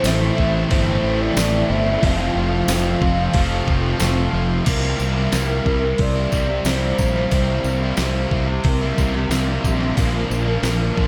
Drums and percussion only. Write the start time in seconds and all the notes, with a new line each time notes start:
0.04 snare, open hi-hat, tambourine
0.38 kick
0.71 kick, open hi-hat
1.37 snare, open hi-hat, tambourine
2.03 kick, open hi-hat
2.68 snare, open hi-hat, tambourine
3.02 kick
3.34 kick, open hi-hat
3.68 kick
4.00 snare, open hi-hat, tambourine
4.66 kick, open hi-hat, crash, tambourine
5.00 tambourine
5.32 snare, open hi-hat, tambourine
5.66 kick
5.98 kick, open hi-hat
6.32 kick, tambourine
6.65 snare, open hi-hat, tambourine
6.98 kick, tambourine
7.16 snare
7.31 kick, open hi-hat, tambourine
7.64 tambourine
7.97 snare, open hi-hat, tambourine
8.31 kick
8.64 kick, open hi-hat
8.98 kick, tambourine
9.14 snare
9.31 snare, open hi-hat, tambourine
9.65 kick, tambourine
9.80 snare
9.97 kick, open hi-hat, tambourine
10.31 tambourine
10.63 snare, open hi-hat, tambourine
10.97 kick